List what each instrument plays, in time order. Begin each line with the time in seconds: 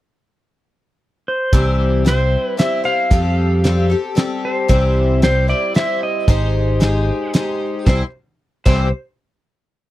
1.28 electric slide guitar C5
1.53 picked electric bass C2, twelve-string acoustic guitar C3 E3 G3 C4 E4 C5, kick, closed hi-hat
2.05 twelve-string acoustic guitar G3 C4 E4 C5, electric slide guitar C5, snare, closed hi-hat
2.47 electric slide guitar B4
2.57 twelve-string acoustic guitar G3 C4 E4 C5, electric slide guitar E5, snare, closed hi-hat
2.84 twelve-string acoustic guitar G3 C4 E4 C5, electric slide guitar F5
3.11 picked electric bass F2, twelve-string acoustic guitar F3 G3 C4 G4 A4, kick, closed hi-hat
3.64 twelve-string acoustic guitar G3 C4 G4 A4, snare, closed hi-hat
3.90 twelve-string acoustic guitar C4 G4 A4
4.15 twelve-string acoustic guitar G3 C4 G4 A4, snare, closed hi-hat
4.45 electric slide guitar C5
4.68 picked electric bass C2, twelve-string acoustic guitar C3 E3 G3 C4 E4 C5, kick, closed hi-hat
5.22 twelve-string acoustic guitar G3 C4 E4 C5, electric slide guitar C5, snare, closed hi-hat
5.48 twelve-string acoustic guitar G3 C4 E4 C5, electric slide guitar D5
5.74 twelve-string acoustic guitar G3 C4 E4 C5, electric slide guitar E5, snare, closed hi-hat
6.03 electric slide guitar D#5
6.28 picked electric bass G#1, twelve-string acoustic guitar G#3 D#4 G4 C5, kick, closed hi-hat
6.80 twelve-string acoustic guitar G#3 D#4 G4 C5, snare, closed hi-hat
7.33 twelve-string acoustic guitar G#3 D#4 G4 C5, snare, closed hi-hat
7.86 picked electric bass C2, twelve-string acoustic guitar C3 E3 G3 C4 E4 C5, electric slide guitar C5, kick, snare
8.65 picked electric bass C2, twelve-string acoustic guitar C3 E3 G3 C4 E4 C5, electric slide guitar C5, kick, crash